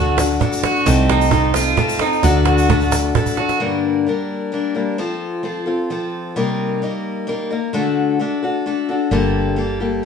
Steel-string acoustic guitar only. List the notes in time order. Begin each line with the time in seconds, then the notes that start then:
Already playing: A3 D4 F#4 A4
0.17 D4 F#4 A4
0.40 A3 D4 F#4 A4
0.86 C3 A3 C4 D#4 A4
1.31 A3 C4 D#4 A4
1.55 C4 D#4 A4
1.77 A3 C4 D#4 A4
2.01 C4 D#4 A4
2.23 D3 A3 D4 F#4 A4
2.68 A3 D4 F#4 A4
3.15 A3 D4 F#4 A4
3.38 D4 F#4 A4
3.60 G2 D3 G3 A#3 D4 A#4
4.07 G3 A#3 D4 A#4
4.52 G3 A#3 D4 A#4
4.75 G3 A#3 D4 A#4
4.98 F3 C4 F4 A4
5.43 F3 C4 F4 A4
5.66 C4 F4 A4
5.90 F3 C4 F4 A4
6.36 C3 G3 A#3 D#4 A#4
6.82 G3 A#3 D#4 A#4
7.27 G3 A#3 D#4 A#4
7.51 A#3 D#4 A#4
7.73 D3 A3 D4 F#4 A4
8.20 A3 D4 F#4 A4
8.43 D4 F#4 A4
8.66 A3 D4 F#4 A4
8.89 D4 F#4 A4
9.11 G2 D3 G3 A#3 G4 A4
9.56 G3 A#3 G4 A4
9.80 G3 A#3 G4 A4